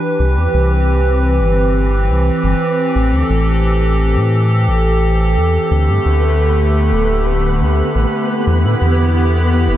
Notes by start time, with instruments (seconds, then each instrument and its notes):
Already playing: analog synth pad E3 D4 G4 B4
0.20 analog synth bass C2, analog synth pad C4 G4
0.37 analog synth bass E2
0.54 analog synth bass C2
1.40 analog synth bass G1
2.09 analog synth bass C2
2.44 analog synth bass G1
2.95 analog synth bass A1, analog synth pad A4
3.13 analog synth bass D2
3.30 analog synth bass A1
4.16 analog synth bass A2
4.68 analog synth bass A1
5.37 analog synth bass E2
5.71 analog synth bass D2, analog synth pad D3 A3, synth texture B3 B4
5.89 analog synth bass G2
6.06 analog synth bass D2
6.92 analog synth bass D1
7.61 analog synth bass D2
7.95 analog synth bass A1
8.47 analog synth bass E2, analog synth pad B3 E4 G4
8.64 analog synth bass A2
8.82 analog synth bass E2
9.68 analog synth bass E1